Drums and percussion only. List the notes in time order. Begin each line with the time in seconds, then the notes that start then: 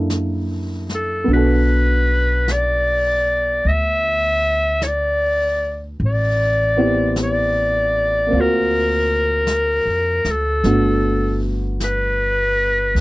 0.10 brush sweep, snare, hi-hat pedal
0.89 snare
1.29 brush sweep
2.48 brush sweep, snare, hi-hat pedal
3.65 brush sweep
4.82 brush sweep, snare, hi-hat pedal
6.00 brush sweep
7.16 brush sweep, snare, hi-hat pedal
8.32 brush sweep
9.47 brush sweep, snare, hi-hat pedal
10.24 snare
10.64 brush sweep, snare
11.80 brush sweep, snare, hi-hat pedal
12.96 brush sweep, snare